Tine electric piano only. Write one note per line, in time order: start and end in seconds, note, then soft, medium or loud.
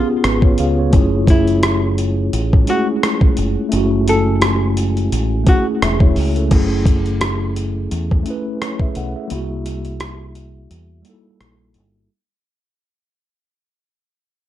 0.00 0.95 B3 medium
0.00 0.93 C#4 medium
0.00 0.45 F4 medium
0.00 0.95 G4 medium
0.00 0.60 G#4 medium
0.24 0.42 B4 medium
0.44 0.58 F4 medium
0.44 0.58 C#5 medium
0.60 0.78 G#4 medium
0.60 0.78 F5 medium
0.79 1.12 F4 medium
0.79 1.12 C#5 medium
0.91 1.19 A3 medium
0.91 1.20 C#4 medium
0.96 1.21 E4 medium
0.96 1.23 G#4 loud
1.25 2.30 A3 medium
1.25 2.32 C#4 medium
1.30 2.33 E4 medium
1.30 2.34 G#4 medium
2.65 2.74 G#3 medium
2.65 3.46 C#4 medium
2.70 3.48 A3 medium
2.70 3.47 E4 medium
2.70 3.49 G#4 medium
3.69 3.98 A3 medium
3.69 3.99 C#4 medium
3.74 4.00 E4 medium
3.74 4.01 F#4 medium
4.04 5.09 A3 medium
4.04 5.11 C#4 medium
4.09 5.12 E4 medium
4.09 5.13 G#5 medium
5.44 6.24 A3 medium
5.44 5.81 C#4 medium
5.49 5.83 E4 medium
5.49 5.82 G#4 medium
5.83 6.01 G#4 medium
5.83 6.01 E5 medium
6.02 6.35 E4 medium
6.02 6.35 C#5 medium
6.37 6.50 C#4 medium
6.37 6.70 A4 medium
6.48 7.54 A3 medium
6.48 7.55 C#4 medium
6.53 7.56 E4 medium
6.53 7.57 G#4 medium
8.23 9.03 A3 medium
8.23 9.04 C#4 medium
8.28 8.61 E4 medium
8.28 8.63 B4 medium
8.62 8.80 E4 soft
8.62 8.80 C#5 medium
8.81 8.96 G#4 medium
8.81 8.95 E5 medium
8.97 9.15 A4 medium
8.97 9.15 F#5 medium
9.16 9.49 G#4 soft
9.16 9.49 E5 medium
9.27 10.33 G3 medium
9.27 10.34 A#3 medium
9.32 10.35 E4 medium
9.32 10.36 F#4 medium
11.02 11.82 G3 medium
11.02 11.83 A#3 medium
11.07 11.13 D#4 medium
11.07 11.86 A4 medium
11.14 11.88 E4 medium